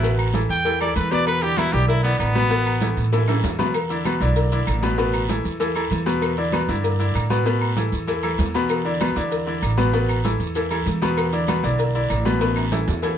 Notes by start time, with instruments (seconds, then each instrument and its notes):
Already playing: upright bass A1, trumpet E4
0.03 grand piano B2 B3 B4, cowbell, high conga, low agogo, long guiro, maracas
0.18 high conga, low agogo, claves, maracas
0.34 grand piano E3 E4 A4, cowbell, high conga, short guiro, maracas
0.49 upright bass E2, trumpet G5, high conga, short guiro, maracas
0.65 grand piano E3 E4 A4, cowbell, high conga, low agogo, long guiro, maracas
0.81 grand piano E3 E4 A4, trumpet D5, high conga, low agogo, claves
0.96 upright bass E2, trumpet B4, cowbell, high conga, short guiro, maracas
1.11 grand piano B2 B3 B4, trumpet D5, cowbell, low agogo, short guiro, maracas
1.27 trumpet B4, cowbell, high conga, low agogo, claves, maracas
1.42 grand piano D3 D4 E4, trumpet G4, high conga, maracas
1.58 grand piano B2 B3 B4, trumpet E4, cowbell, high conga, low agogo, short guiro, claves, maracas
1.73 upright bass B1, grand piano D3 D4 E4, trumpet G4, cowbell, high conga, short guiro, maracas
1.88 trumpet E4, cowbell, high conga, low agogo, long guiro, maracas
2.03 grand piano D3 D4 E4, trumpet B3, high conga, maracas
2.19 upright bass A1, trumpet B3, cowbell, high conga, low agogo, short guiro, claves, maracas
2.35 grand piano B2 B3 B4, cowbell, high conga, short guiro, maracas
2.50 grand piano B2 B3 B4, cowbell, high conga, low agogo, maracas
2.66 high conga, low agogo, claves, maracas
2.81 grand piano E3 E4 A4, cowbell, high conga, short guiro, maracas
2.97 upright bass A2, high conga, short guiro, maracas
3.13 grand piano E3 E4 A4, cowbell, high bongo, high conga, low agogo, long guiro, maracas
3.28 grand piano E3 E4 A4, low bongo, high conga, high timbale, low agogo, claves, maracas
3.43 upright bass E2, cowbell, low bongo, high conga, low timbale, short guiro, maracas
3.59 grand piano B2 B3 B4, cowbell, low bongo, high conga, low timbale, low agogo, short guiro, maracas
3.74 cowbell, high conga, low agogo, long guiro, claves, maracas
3.90 grand piano D3 D4 E4, high conga, maracas
4.05 grand piano B2 B3 B4, cowbell, high conga, low agogo, short guiro, claves, maracas
4.20 upright bass B1, grand piano D3 D4 E4, cowbell, high conga, short guiro, maracas
4.36 cowbell, high conga, low agogo, long guiro, maracas
4.52 grand piano D3 D4 E4, high conga, maracas
4.67 upright bass A1, cowbell, high conga, low agogo, short guiro, claves, maracas
4.82 grand piano B2 B3 B4, cowbell, high conga, short guiro, maracas
4.98 grand piano B2 B3 B4, cowbell, low agogo, long guiro, maracas
5.14 high conga, low agogo, claves, maracas
5.29 grand piano E3 E4 A4, cowbell, high conga, short guiro, maracas
5.45 upright bass E2, high conga, short guiro, maracas
5.60 grand piano E3 E4 A4, cowbell, high conga, low agogo, long guiro, maracas
5.75 grand piano E3 E4 A4, high conga, low agogo, claves, maracas
5.91 upright bass E2, cowbell, high conga, short guiro, maracas
6.06 grand piano B2 B3 B4, cowbell, high conga, low agogo, short guiro, maracas
6.22 cowbell, high conga, low agogo, long guiro, claves, maracas
6.37 grand piano D3 D4 E4, high conga
6.52 grand piano B2 B3 B4, cowbell, high conga, low agogo, short guiro, claves, maracas
6.68 upright bass G2, grand piano D3 D4 E4, cowbell, high conga, short guiro, maracas
6.84 cowbell, high conga, low agogo, long guiro, maracas
6.99 grand piano D3 D4 E4, high conga, maracas
7.15 upright bass A2, cowbell, high conga, low agogo, short guiro, claves, maracas
7.30 grand piano B2 B3 B4, cowbell, high conga, short guiro, maracas
7.46 grand piano B2 B3 B4, cowbell, high conga, low agogo, long guiro, maracas
7.61 high conga, low agogo, claves
7.77 grand piano E3 E4 A4, cowbell, high conga, short guiro, maracas
7.92 upright bass E2, high conga, short guiro, maracas
8.07 grand piano E3 E4 A4, cowbell, high conga, low agogo, long guiro, maracas
8.23 grand piano E3 E4 A4, high conga, low agogo, claves, maracas
8.38 upright bass E2, cowbell, high conga, low timbale, short guiro, maracas
8.54 grand piano B2 B3 B4, cowbell, low agogo, short guiro, maracas
8.69 cowbell, high conga, low agogo, long guiro, claves, maracas
8.85 grand piano D3 D4 E4, high conga
9.00 grand piano B2 B3 B4, cowbell, high conga, low agogo, short guiro, claves, maracas
9.16 upright bass E2, grand piano D3 D4 E4, cowbell, high conga, short guiro, maracas
9.31 cowbell, high conga, low agogo, long guiro, maracas
9.46 grand piano D3 D4 E4, high conga
9.62 upright bass A1, cowbell, high conga, low agogo, short guiro, claves, maracas
9.77 grand piano B2 B3 B4, cowbell, high conga, short guiro, maracas
9.93 grand piano B2 B3 B4, cowbell, low agogo, long guiro, maracas
10.09 high conga, low agogo, claves, maracas
10.24 grand piano E3 E4 A4, cowbell, high conga, short guiro, maracas
10.40 upright bass E2, high conga, short guiro, maracas
10.55 grand piano E3 E4 A4, cowbell, high conga, low agogo, long guiro, maracas
10.70 grand piano E3 E4 A4, high conga, low agogo, claves, maracas
10.86 upright bass E2, cowbell, high conga, short guiro, maracas
11.02 grand piano B2 B3 B4, cowbell, high conga, low agogo, short guiro, maracas
11.17 cowbell, high conga, low agogo, long guiro, claves, maracas
11.32 grand piano D3 D4 E4, high conga, maracas
11.48 grand piano B2 B3 B4, cowbell, high conga, low agogo, short guiro, claves, maracas
11.63 upright bass B1, grand piano D3 D4 E4, cowbell, high conga, short guiro, maracas
11.79 cowbell, high conga, low agogo, long guiro, maracas
11.94 grand piano D3 D4 E4, high conga, maracas
12.10 upright bass A1, cowbell, high conga, low agogo, short guiro, claves, maracas
12.25 grand piano B2 B3 B4, cowbell, high conga, short guiro, maracas
12.41 grand piano B2 B3 B4, cowbell, high conga, high timbale, low agogo, long guiro, maracas
12.56 high conga, high timbale, low agogo, claves, maracas
12.72 grand piano E3 E4 A4, cowbell, high conga, high timbale, short guiro, maracas
12.88 upright bass E2, high conga, low timbale, short guiro, maracas
13.02 grand piano E3 E4 A4, cowbell, high conga, low timbale, low agogo, long guiro, maracas